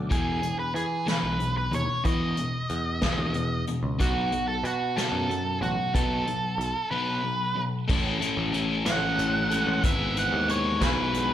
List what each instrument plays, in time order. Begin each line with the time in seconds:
0.10 overdriven electric guitar E2 B2 E3, picked electric bass E2, lead electric guitar G#4, kick, closed hi-hat
0.42 overdriven electric guitar E2 B2, closed hi-hat
0.59 lead electric guitar B4
0.74 picked electric bass E3, lead electric guitar G#4, closed hi-hat
1.06 overdriven electric guitar E2 B2 E3, lead electric guitar B4, snare, closed hi-hat
1.23 picked electric bass B1
1.38 overdriven electric guitar E2 B2, closed hi-hat
1.58 lead electric guitar B4
1.71 picked electric bass D#2, overdriven electric guitar E2 B2, lead electric guitar C#5, closed hi-hat
2.04 overdriven electric guitar E2 B2 E3, picked electric bass E3, lead electric guitar D#5, kick, closed hi-hat
2.37 overdriven electric guitar E2 B2, closed hi-hat
2.69 picked electric bass E2, closed hi-hat
3.02 overdriven electric guitar E2 B2 E3, kick, snare, closed hi-hat
3.18 picked electric bass D#2
3.34 picked electric bass E2, overdriven electric guitar E2 B2, closed hi-hat
3.67 overdriven electric guitar E2 B2, closed hi-hat
3.83 picked electric bass C#2
3.99 picked electric bass B1, overdriven electric guitar B2 F#3 B3, lead electric guitar F#4, kick, closed hi-hat
4.32 overdriven electric guitar B2 F#3, closed hi-hat
4.48 lead electric guitar A4
4.64 picked electric bass B2, lead electric guitar F#4, closed hi-hat
4.96 overdriven electric guitar B2 F#3 B3, lead electric guitar A4, snare, closed hi-hat
5.12 picked electric bass F#2
5.29 overdriven electric guitar B2 F#3, closed hi-hat
5.61 picked electric bass A1, overdriven electric guitar B2 F#3, lead electric guitar F#4, closed hi-hat
5.94 overdriven electric guitar B2 F#3 B3, picked electric bass B2, lead electric guitar A4, kick, closed hi-hat
6.27 overdriven electric guitar B2 F#3, closed hi-hat
6.58 picked electric bass B1, closed hi-hat
6.91 overdriven electric guitar B2 F#3 B3, lead electric guitar B4
7.23 overdriven electric guitar B2 F#3
7.55 overdriven electric guitar B2 F#3
7.88 picked electric bass A1, overdriven electric guitar A2 A3 C#4 E4 A4, kick, crash
8.20 overdriven electric guitar C#4 E4 A4, closed hi-hat
8.37 picked electric bass A1
8.52 overdriven electric guitar A3 C#4 E4 A4, closed hi-hat
8.85 picked electric bass A1, overdriven electric guitar A3 C#4 E4 A4, lead electric guitar F#5, snare, closed hi-hat
9.19 picked electric bass A1, overdriven electric guitar C#4, closed hi-hat
9.50 overdriven electric guitar G#3 C#4 E4 A4, closed hi-hat
9.67 picked electric bass A1
9.82 picked electric bass G#1, overdriven electric guitar G#2 G#3 B3 E4 B4, lead electric guitar E5, kick, closed hi-hat
10.15 overdriven electric guitar B3 E4 B4, lead electric guitar F#5, closed hi-hat
10.33 picked electric bass D#2
10.47 overdriven electric guitar G#3 B3 E4 B4, lead electric guitar C#5, closed hi-hat
10.80 picked electric bass B1, overdriven electric guitar G#3 B3 E4 G#4 B4, lead electric guitar B4, kick, snare, closed hi-hat
11.12 overdriven electric guitar B3, closed hi-hat